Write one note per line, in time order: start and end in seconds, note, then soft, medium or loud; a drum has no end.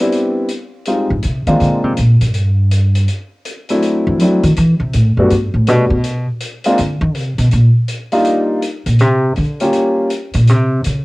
0.00 0.48 G3 medium
0.00 0.48 B3 soft
0.00 0.48 C4 soft
0.00 0.48 D4 soft
0.00 0.48 E4 medium
0.12 closed hi-hat soft
0.48 closed hi-hat soft
0.85 1.08 G3 soft
0.85 1.08 G#3 soft
0.85 1.08 C4 soft
0.85 1.09 D#4 soft
0.85 1.09 F4 medium
0.85 closed hi-hat soft
1.10 1.23 G2 medium
1.23 1.46 C3 medium
1.23 closed hi-hat soft
1.47 1.60 D#3 medium
1.47 1.95 G#3 medium
1.47 1.95 A#3 medium
1.47 1.96 C4 soft
1.47 1.96 D4 soft
1.47 1.96 F4 medium
1.47 closed hi-hat soft
1.60 1.84 D3 medium
1.60 closed hi-hat soft
1.84 1.97 C3 medium
1.97 2.20 A#2 medium
1.97 closed hi-hat soft
2.21 3.05 G2 medium
2.21 closed hi-hat soft
2.34 closed hi-hat soft
2.71 closed hi-hat soft
2.95 closed hi-hat soft
3.08 closed hi-hat soft
3.45 closed hi-hat soft
3.69 4.17 F#3 medium
3.69 4.17 A3 soft
3.69 4.17 C4 soft
3.69 4.18 D4 soft
3.69 4.18 E4 medium
3.69 closed hi-hat soft
3.82 closed hi-hat soft
4.07 4.20 E3 medium
4.19 4.43 F#3 medium
4.19 4.42 F#3 medium
4.19 4.42 A3 soft
4.19 4.42 C4 soft
4.19 4.42 D4 soft
4.19 4.42 E4 medium
4.19 closed hi-hat soft
4.43 4.56 D#3 medium
4.43 closed hi-hat soft
4.56 4.79 E3 loud
4.56 closed hi-hat soft
4.80 4.93 C3 medium
4.93 5.16 A2 medium
4.93 closed hi-hat soft
5.17 5.30 F#2 medium
5.17 5.30 G3 medium
5.17 5.30 A3 medium
5.17 5.30 B3 medium
5.17 5.30 D4 medium
5.17 5.30 F#4 medium
5.30 5.53 G2 medium
5.30 closed hi-hat soft
5.54 5.68 A2 medium
5.67 5.90 B2 medium
5.67 5.89 G3 soft
5.67 5.89 A3 soft
5.67 5.89 B3 soft
5.67 5.89 D4 soft
5.67 5.89 F#4 medium
5.67 closed hi-hat soft
5.90 6.25 B2 medium
6.04 closed hi-hat soft
6.40 closed hi-hat soft
6.64 6.77 G#3 medium
6.64 6.77 A#3 medium
6.64 6.77 C4 medium
6.64 6.78 D4 medium
6.64 6.78 F4 medium
6.64 closed hi-hat soft
6.78 7.00 D3 medium
6.78 closed hi-hat soft
7.01 7.16 D#3 loud
7.15 7.38 C3 medium
7.15 closed hi-hat soft
7.38 7.51 B2 medium
7.38 closed hi-hat soft
7.51 7.67 A#2 medium
7.51 closed hi-hat soft
7.88 closed hi-hat soft
8.12 8.60 G3 medium
8.12 8.60 A#3 medium
8.12 8.60 D4 medium
8.12 8.60 D#4 medium
8.12 8.60 F4 medium
8.12 closed hi-hat soft
8.25 closed hi-hat soft
8.62 closed hi-hat soft
8.86 9.01 A#2 medium
8.86 closed hi-hat soft
8.99 9.37 C3 medium
8.99 closed hi-hat soft
9.36 9.60 D3 medium
9.36 closed hi-hat soft
9.60 10.08 G3 medium
9.60 10.08 A#3 medium
9.60 10.08 C#4 medium
9.60 10.08 F4 medium
9.60 10.08 G4 medium
9.60 closed hi-hat soft
9.73 closed hi-hat soft
10.10 closed hi-hat soft
10.33 10.49 A#2 medium
10.33 closed hi-hat soft
10.47 10.85 C3 medium
10.47 closed hi-hat soft
10.84 11.05 C#3 medium
10.84 closed hi-hat soft